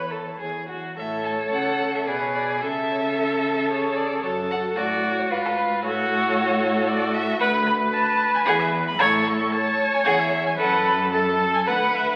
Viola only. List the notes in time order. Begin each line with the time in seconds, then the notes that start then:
Already playing: C#5
0.98 C#5
2.07 B4
2.62 A4
2.90 C#5
3.16 A4
3.71 G#4
4.24 F#4
5.31 B4
5.84 A4
7.41 B4
8.99 A4
9.52 C#5
10.58 B4
11.12 A4
11.68 B4